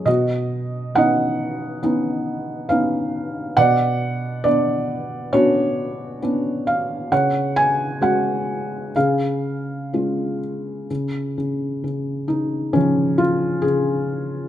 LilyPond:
<<
  \new Staff \with { instrumentName = "Felt piano" } { \time 4/4 \key b \lydian \tempo 4 = 67 << { dis''4 fis''2 eis''4 | fis''4 d''4 cis''4. eis''8 | fis''8 gis''8 fis''4 eis''4. r8 | \key des \major r4. ees'8 des'8 f'8 aes'4 | } \\ { fis'4 dis''2 r4 | d''2 fis'2 | cis''2 gis'2 | r2 f2 | } >> }
  \new Staff \with { instrumentName = "Felt piano" } { \time 4/4 \key b \lydian b,4 <b cis' dis'>4 <b cis' dis'>4 <b cis' dis'>4 | b,4 <b d'>4 <b cis' d'>4 <b cis' d'>4 | cis4 <gis cis' fis'>4 cis4 <gis cis' eis'>4 | \key des \major des8 des8 des8 des8 des4 des4 | }
>>